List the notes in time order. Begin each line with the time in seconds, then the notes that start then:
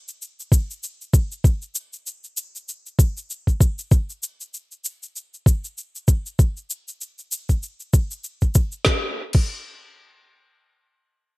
0.08 shaker
0.22 shaker
0.40 shaker
0.52 kick, shaker
0.71 shaker
0.83 shaker
1.01 shaker
1.13 kick, shaker
1.32 shaker
1.44 kick, shaker
1.62 shaker
1.75 shaker
1.93 shaker
2.07 shaker
2.24 shaker
2.37 shaker
2.56 shaker
2.69 shaker
2.86 shaker
2.99 kick, shaker
3.17 shaker
3.30 shaker
3.47 kick, shaker
3.61 kick, shaker
3.79 shaker
3.91 kick, shaker
4.10 shaker
4.23 shaker
4.41 shaker
4.54 shaker
4.72 shaker
4.85 shaker
5.03 shaker
5.16 shaker
5.34 shaker
5.46 kick, shaker
5.65 shaker
5.78 shaker
5.95 shaker
6.08 kick, shaker
6.26 shaker
6.39 kick, shaker
6.57 shaker
6.70 shaker
6.88 shaker
7.01 shaker
7.19 shaker
7.32 shaker
7.49 kick, shaker
7.63 shaker
7.80 shaker
7.93 kick, shaker
8.11 shaker
8.24 shaker
8.41 kick, shaker
8.55 kick, shaker
8.72 shaker
8.85 kick, snare
9.33 kick, crash